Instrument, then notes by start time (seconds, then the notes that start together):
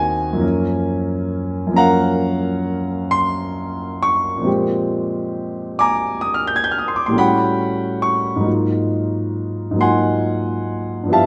grand piano
Already playing: D#2 D#3 A#3 C4 F#4 C5 D#5 F#5 G#5
0.33 F#2 F3
0.37 A#3 C#4 A#4
1.67 F#2 F3
1.71 A#3 C#4
1.76 A#4 F5 F#5 A#5
3.11 C6
4.03 C#6
4.37 A#2 F3
4.42 G#3 C4
4.46 G4
5.79 G#5 A#5 D6
6.21 D#6
6.34 F6
6.47 G6
6.56 G#6
6.64 G6
6.71 F6
6.78 D#6
6.88 C6
6.96 D6
7.06 A2 G3 C6
7.12 A3 C#4 F#4
7.18 F#5 G5 B5
8.02 C#6
8.36 G#2 F#3
8.40 A#3 D#4
8.45 F4
9.71 G#2 F#3
9.75 A#3 D#4
9.79 F4 F#5 G#5 C6
11.03 G2 F3
11.08 B3 E4 G4
11.13 E5 F5 A5